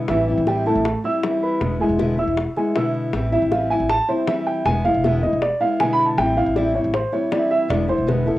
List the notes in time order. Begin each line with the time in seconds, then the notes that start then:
0.08 A1 E3 G3 C4 E4 E5, high bongo
0.28 G3 C4 E4
0.38 A1
0.47 E3 G3 C4 E4 G4 G5, high bongo
0.66 G3 A3 C4 E4 A4 A5
0.76 A1
0.85 muted steel-string acoustic guitar stroke, high bongo
1.04 G3 C4 E4 E5 E6
1.23 E3 G3 C4 E4, high bongo, low bongo
1.43 B4 B5
1.60 E1 B2 D3 G#3 B3 E4, high bongo
1.80 G#3 B3 E4 G#4 G#5
1.89 E1
1.98 B2 D3 G#3 B3 E4, high bongo
2.18 G#3 B3 E4 E5 E6, high bongo
2.28 E1
2.37 muted steel-string acoustic guitar stroke, high bongo
2.56 G#3 B3 E4 G#4 G#5, high bongo
2.75 B2 D3 G#3 B3 E4 E5 E6, high bongo, low bongo
2.95 high bongo
3.13 A1 E3 G3 C4 E4, high bongo
3.32 G3 C4 E4 E5, high bongo
3.42 A1
3.52 E3 G3 C4 E4 F5, high bongo
3.70 G3 C4 E4 G#5
3.80 A1
3.89 A5, muted steel-string acoustic guitar stroke, high bongo
4.08 G3 C4 E4 C5, high bongo
4.27 E3 G3 C4 E4 E5, high bongo, low bongo
4.47 G5, high bongo
4.65 E1 B2 D3 G#3 B3 E4 G#5, high bongo
4.85 G#3 B3 E4 F5, high bongo
4.94 E1
5.04 B2 D3 G#3 B3 E4 E5, high bongo
5.23 G#3 B3 E4 D#5, high bongo
5.33 E1
5.42 D5, muted steel-string acoustic guitar stroke, high bongo
5.60 G#3 B3 E4 F5
5.79 B2 D3 G#3 B3 E4 G#5, high bongo, low bongo
5.93 B5
5.99 high bongo
6.06 A5
6.17 A1 E3 G3 C4 E4 G5, high bongo
6.37 G3 C4 E4 F5, high bongo
6.46 A1
6.56 E3 G3 C4 E4 D5, high bongo
6.75 G3 C4 E4 C#5
6.84 A1
6.94 C5, muted steel-string acoustic guitar stroke, high bongo
7.12 G3 C4 E4 C#5, high bongo
7.31 E3 G3 C4 E4 D5, high bongo, low bongo
7.51 E5, high bongo
7.69 E1 B2 D3 G#3 B3 E4 D5, high bongo
7.88 G#3 B3 E4 C5, high bongo
7.98 E1
8.07 B2 D3 G#3 B3 E4 B4, high bongo
8.26 G#3 B3 E4 A4, high bongo